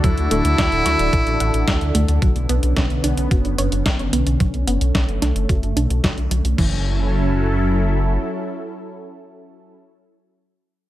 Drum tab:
CC |----------------|----------------|----------------|x---------------|
HH |xxxxxxxxxxxxxxxx|xxxxxxxxxxxxxxxx|xxxxxxxxxxxxxxxx|----------------|
SD |----o-o-----o---|----o-------o---|----o-o-----o---|----------------|
BD |o---o---o---o---|o---o---o---o---|o---o---o---o---|o---------------|

CC |----------------|
HH |----------------|
SD |----------------|
BD |----------------|